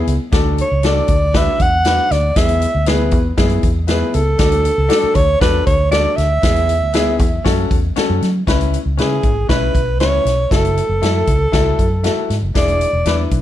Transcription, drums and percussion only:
0.07 closed hi-hat medium
0.32 kick loud
0.32 snare loud
0.32 closed hi-hat medium
0.58 closed hi-hat medium
0.83 snare loud
0.83 closed hi-hat medium
1.08 kick medium
1.08 closed hi-hat medium
1.34 kick medium
1.34 snare loud
1.34 closed hi-hat medium
1.60 kick medium
1.60 closed hi-hat medium
1.85 snare medium
1.85 closed hi-hat medium
2.11 snare soft
2.11 closed hi-hat medium
2.36 kick loud
2.36 snare loud
2.36 closed hi-hat loud
2.49 closed hi-hat medium
2.62 closed hi-hat medium
2.86 snare loud
2.86 closed hi-hat medium
3.11 kick medium
3.11 closed hi-hat medium
3.38 kick medium
3.38 snare loud
3.38 closed hi-hat medium
3.49 closed hi-hat soft
3.63 kick medium
3.63 closed hi-hat medium
3.88 snare medium
3.88 closed hi-hat medium
4.14 closed hi-hat medium
4.39 kick medium
4.39 snare loud
4.39 closed hi-hat loud
4.52 closed hi-hat medium
4.65 closed hi-hat medium
4.90 snare loud
4.90 closed hi-hat medium
5.15 kick medium
5.15 closed hi-hat medium
5.41 kick medium
5.41 snare loud
5.41 closed hi-hat medium
5.67 kick medium
5.67 closed hi-hat medium
5.92 snare loud
5.92 closed hi-hat medium
6.18 snare soft
6.18 closed hi-hat medium
6.43 kick loud
6.43 snare loud
6.43 closed hi-hat loud
6.56 closed hi-hat soft
6.69 closed hi-hat medium
6.93 snare loud
6.93 closed hi-hat medium
7.19 kick medium
7.19 closed hi-hat medium
7.46 kick medium
7.46 snare loud
7.46 closed hi-hat medium
7.71 kick loud
7.71 closed hi-hat medium
7.96 snare medium
7.96 closed hi-hat medium
8.22 snare soft
8.22 closed hi-hat medium
8.47 kick medium
8.47 snare loud
8.47 closed hi-hat medium
8.61 closed hi-hat medium
8.74 closed hi-hat medium
8.98 snare medium
8.98 closed hi-hat medium
9.23 kick medium
9.23 closed hi-hat medium
9.49 kick medium
9.49 snare loud
9.49 closed hi-hat medium
9.75 kick medium
9.75 closed hi-hat medium
10.00 snare medium
10.00 closed hi-hat medium
10.26 snare soft
10.26 closed hi-hat medium
10.51 kick medium
10.51 snare loud
10.51 closed hi-hat medium
10.65 closed hi-hat soft
10.77 closed hi-hat medium
11.03 snare loud
11.03 closed hi-hat medium
11.27 kick medium
11.27 closed hi-hat medium
11.53 kick medium
11.53 snare loud
11.53 closed hi-hat medium
11.79 kick medium
11.79 closed hi-hat medium
12.04 snare medium
12.04 closed hi-hat medium
12.30 snare soft
12.30 closed hi-hat medium
12.55 kick medium
12.55 snare loud
12.55 closed hi-hat medium
12.68 closed hi-hat soft
12.81 closed hi-hat medium
13.05 snare loud
13.05 closed hi-hat medium
13.31 kick medium
13.31 closed hi-hat medium

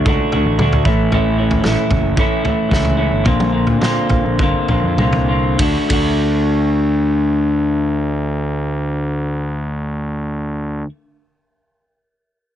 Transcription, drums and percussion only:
0.06 kick medium
0.32 floor tom medium
0.59 mid tom medium
0.73 floor tom medium
0.85 kick medium
1.12 floor tom medium
1.51 floor tom medium
1.64 snare medium
1.64 mid tom medium
1.91 kick medium
1.91 floor tom medium
1.91 mid tom medium
2.17 kick loud
2.45 floor tom medium
2.71 kick medium
2.71 snare medium
2.85 floor tom medium
3.25 kick medium
3.25 floor tom medium
3.40 mid tom medium
3.67 floor tom medium
3.81 snare medium
3.81 mid tom medium
4.09 kick medium
4.09 floor tom medium
4.39 kick medium
4.68 floor tom medium
4.98 mid tom medium
5.13 floor tom medium
5.59 kick medium
5.59 ride medium
5.90 kick medium
5.90 ride medium

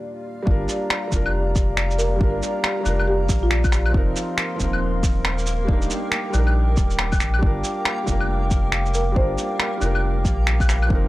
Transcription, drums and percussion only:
0.47 kick loud
0.69 shaker medium
0.90 finger snap loud
1.12 kick medium
1.12 shaker medium
1.26 claves medium
1.55 kick loud
1.55 shaker medium
1.77 finger snap loud
1.91 shaker soft
1.99 shaker medium
2.21 kick loud
2.43 shaker medium
2.64 finger snap loud
2.86 claves soft
2.86 shaker medium
2.99 claves medium
3.29 kick loud
3.29 shaker medium
3.51 finger snap loud
3.64 kick loud
3.64 claves medium
3.64 shaker soft
3.72 finger snap medium
3.72 shaker medium
3.86 claves medium
3.94 kick loud
4.16 shaker medium
4.38 finger snap loud
4.60 kick medium
4.60 shaker medium
4.73 claves medium
5.03 kick loud
5.03 shaker medium
5.25 finger snap loud
5.38 shaker soft
5.46 shaker medium
5.69 kick loud
5.82 shaker soft
5.90 shaker medium
6.12 finger snap loud
6.33 claves soft
6.33 shaker medium
6.47 claves medium
6.77 kick loud
6.77 shaker medium
6.90 shaker soft
6.99 finger snap loud
7.12 kick loud
7.12 claves medium
7.12 shaker soft
7.20 finger snap medium
7.20 shaker medium
7.34 claves medium
7.43 kick loud
7.64 shaker medium
7.85 finger snap loud
8.07 kick medium
8.07 shaker medium
8.20 claves medium
8.51 kick loud
8.51 shaker medium
8.72 finger snap loud
8.86 shaker soft
8.94 shaker medium
9.16 kick loud
9.38 shaker medium
9.60 finger snap loud
9.81 claves soft
9.81 shaker medium
9.95 claves medium
10.25 kick loud
10.25 shaker medium
10.47 finger snap loud
10.60 kick loud
10.60 claves medium
10.60 shaker soft
10.69 finger snap medium
10.69 shaker medium
10.82 claves medium
10.90 kick loud

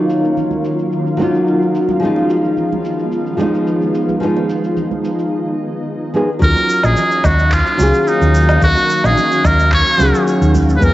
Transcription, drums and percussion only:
0.10 shaker medium
0.24 shaker soft
0.37 low conga medium
0.37 shaker soft
0.51 high conga medium
0.51 shaker soft
0.65 shaker medium
0.79 shaker soft
0.92 shaker soft
1.07 shaker soft
1.20 high bongo medium
1.20 high conga medium
1.20 shaker medium
1.34 shaker soft
1.47 shaker soft
1.62 shaker soft
1.75 shaker medium
1.89 high conga medium
1.89 shaker soft
2.02 shaker soft
2.16 high bongo medium
2.16 shaker soft
2.30 shaker medium
2.44 shaker soft
2.57 low conga medium
2.57 shaker soft
2.72 high conga medium
2.72 shaker soft
2.85 shaker medium
2.99 shaker soft
3.12 shaker soft
3.27 shaker soft
3.39 high bongo medium
3.39 high conga medium
3.39 shaker medium
3.54 shaker soft
3.67 shaker soft
3.82 shaker soft
3.94 shaker medium
4.09 high conga medium
4.09 shaker soft
4.22 shaker soft
4.36 high bongo medium
4.36 shaker soft
4.49 shaker medium
4.64 shaker soft
4.77 low conga medium
4.77 shaker soft
4.91 high conga medium
4.91 shaker soft
5.05 shaker medium
5.19 shaker soft
6.42 kick loud
6.42 shaker soft
6.57 high bongo medium
6.57 shaker soft
6.70 shaker medium
6.84 low woodblock medium
6.84 shaker soft
6.97 low conga medium
6.97 shaker soft
7.12 shaker soft
7.24 kick loud
7.24 high conga medium
7.24 low woodblock medium
7.24 shaker medium
7.39 shaker soft
7.52 kick loud
7.52 clap medium
7.52 shaker soft
7.67 shaker soft
7.80 high bongo medium
7.80 shaker medium
7.94 shaker soft
8.08 shaker soft
8.22 shaker soft
8.35 shaker medium
8.49 low woodblock medium
8.49 shaker soft
8.62 kick loud
8.62 shaker soft
8.77 high bongo medium
8.77 shaker soft
8.90 shaker medium
9.04 low woodblock medium
9.04 shaker soft
9.18 low conga medium
9.18 shaker soft
9.32 shaker soft
9.45 kick loud
9.45 high conga medium
9.45 low woodblock medium
9.45 shaker medium
9.60 shaker soft
9.72 kick loud
9.72 clap medium
9.72 shaker soft
9.87 shaker soft
10.00 high bongo medium
10.00 shaker medium
10.15 shaker soft
10.28 shaker soft
10.42 shaker soft
10.55 kick medium
10.55 high conga medium
10.55 shaker medium
10.69 high bongo medium
10.69 shaker soft
10.82 kick loud
10.82 shaker soft

